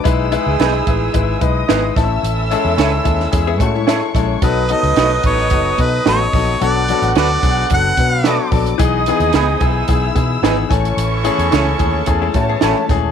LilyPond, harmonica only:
\new Staff \with { instrumentName = "Harmonica" } { \time 4/4 \key e \major \tempo 4 = 110 r1 | r1 | b'8 dis''4 cis''4 b'8 cis''4 | d''4 d''4 fis''4. r8 |
r1 | r1 | }